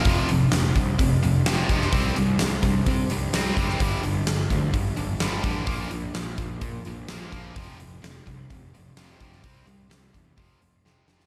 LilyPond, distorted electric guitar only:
\new Staff \with { instrumentName = "Distorted electric guitar" } { \clef bass \time 4/4 \key f \mixolydian \tempo 4 = 128 <f, c f>8 <f, c>8 <f, c>8 <f, c>8 <f, c>8 <f, c>8 <f, c f>8 <f, c f>8 | <c g c'>8 <c g>8 <c g>8 <c g>8 <c g>8 <c g>8 <c g c'>8 <c g c'>8 | <g, d g>8 <g, d>8 <g, d>8 <g, d>8 <g, d>8 <g, d>8 <g, d g>8 <g, d g>8 | <bes, f bes>8 <bes, f>8 <bes, f>8 <bes, f>8 <bes, f>8 <bes, f>8 <bes, f bes>8 <bes, f bes>8 |
<f, c f>8 <f, c>8 <f, c>8 <f, c>8 <f, c>8 <f, c>8 <f, c f>8 <f, c f>8 | <c g c'>8 <c g>8 <c g>8 <c g>8 <f, c f>8 <f, c>8 <f, c f>8 <f, c f>8 | }